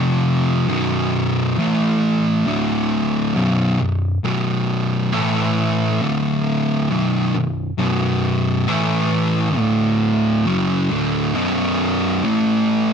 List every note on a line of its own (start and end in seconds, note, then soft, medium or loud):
0.00 0.67 F2 medium
0.00 0.68 C3 loud
0.00 0.68 F3 loud
0.67 1.56 B1 medium
0.67 1.57 F#2 medium
0.67 1.57 B2 loud
1.57 2.45 A2 medium
1.57 2.46 E3 loud
1.57 2.46 A3 loud
2.47 3.34 D2 loud
2.47 3.34 A2 loud
2.47 3.35 D3 loud
3.35 3.78 B1 medium
3.35 3.79 F#2 medium
3.35 3.79 B2 loud
3.80 4.16 B1 medium
3.80 4.16 F#2 medium
4.24 5.13 B1 medium
4.24 5.13 F#2 loud
4.24 5.14 B2 medium
5.13 6.01 A2 loud
5.13 6.01 E3 loud
5.13 6.01 A3 loud
6.02 6.89 D2 loud
6.02 6.90 A2 loud
6.02 6.90 D3 loud
6.89 7.33 B1 loud
6.89 7.33 F#2 loud
6.89 7.34 B2 loud
7.34 7.71 B1 medium
7.34 7.71 F#2 medium
7.78 8.68 B1 loud
7.78 8.68 F#2 medium
7.78 8.69 B2 loud
8.68 9.57 A2 loud
8.68 9.57 E3 loud
8.68 9.58 A3 loud
9.57 10.45 D2 medium
9.57 10.46 A2 loud
9.57 10.46 D3 loud
10.45 10.90 F#2 medium
10.45 10.90 C#3 loud
10.45 10.90 F#3 loud
10.90 11.34 D2 medium
10.90 11.34 A2 medium
10.90 11.35 D3 loud
11.34 12.23 B1 medium
11.34 12.23 F#2 medium
11.34 12.23 B2 loud
12.24 12.93 A2 loud
12.24 12.93 E3 loud
12.24 12.93 A3 loud